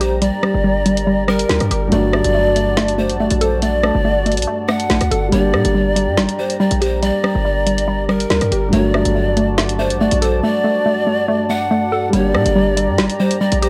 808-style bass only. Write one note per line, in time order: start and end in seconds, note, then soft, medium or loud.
0.00 0.31 A#1 loud
0.54 1.46 G1 loud
1.49 1.60 D2 loud
1.61 1.70 G2 loud
1.71 1.91 G1 loud
1.92 2.23 G1 loud
2.24 3.11 G1 loud
3.10 3.21 A1 loud
3.20 3.30 G1 loud
3.31 3.92 A#1 loud
3.95 4.39 G1 loud
4.37 4.47 A#1 loud
4.90 5.00 A#1 loud
5.01 5.10 D2 loud
5.11 5.32 G1 loud
5.32 5.55 G1 loud
5.54 5.64 A#2 loud
5.65 6.09 G1 loud
6.07 6.19 G2 loud
6.17 6.28 G1 loud
6.71 7.12 A#1 loud
7.35 8.26 G1 loud
8.30 8.41 D2 loud
8.41 8.51 G2 loud
8.52 8.72 G1 loud
8.73 9.04 G1 loud
9.05 9.92 G1 loud
9.91 10.02 A1 loud
10.00 10.11 G1 loud
10.12 10.42 A#1 loud
12.13 12.36 G1 loud
12.35 12.45 A#2 loud
12.46 12.90 G1 loud
12.88 13.00 G2 loud
12.98 13.09 G1 loud
13.52 13.69 A#1 loud